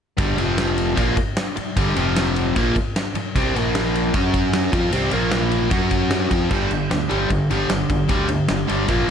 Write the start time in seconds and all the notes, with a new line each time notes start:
0.17 G1 G2 D3 G3, kick, ride
0.37 F1 F2 C3 F3, ride
0.58 snare, ride
0.78 ride
0.95 A#1 A#2 F3 A#3, kick, ride
1.17 kick, ride
1.37 snare, ride
1.56 muted overdriven electric guitar stroke, muted fingered electric bass stroke, ride
1.76 G1 G2 D3 G3, kick, ride
1.95 F1 F2 C3 F3, ride
2.16 snare, ride
2.36 ride
2.56 A#1 A#2 F3 A#3, kick, ride
2.76 kick, ride
2.96 snare, ride
3.14 muted fingered electric bass stroke, muted overdriven electric guitar stroke, ride
3.35 C2 C3 G3 C4, kick, ride
3.56 A#1 A#2 F3 A#3, ride
3.75 snare, ride
3.95 ride
4.14 F#2 F#3 C#4 F#4, kick, ride
4.34 kick, ride
4.53 snare, ride
4.72 F2 F3 C4 F4, kick, ride
4.92 C2 C3 G3 C4, ride
5.11 A#1 A#2 F3 A#3, ride
5.31 snare, ride
5.51 ride
5.70 F#2 F#3 C#4 F#4, kick, ride
5.91 kick, ride
6.11 snare, ride
6.31 F2 F3 C4 F4, kick, ride
6.50 G1 G2 D3 G3, kick, crash
6.71 G1 G2 D3, ride
6.90 D2 G2 D3, snare, ride
7.08 G1 G2 D3 G3, ride
7.30 G1 G2 D3, kick, ride
7.50 G1 G2 D3 G3, ride
7.70 G1 G2 D3, snare, ride
7.90 G1 G2 D3, kick, ride
8.08 D2 G2 D3 G3, kick, ride
8.29 G2 D3, ride
8.48 G1 G2 D3, snare, ride
8.67 G1 G2 D3 G3, ride
8.88 A#1 A#2 F3 A#3, kick, ride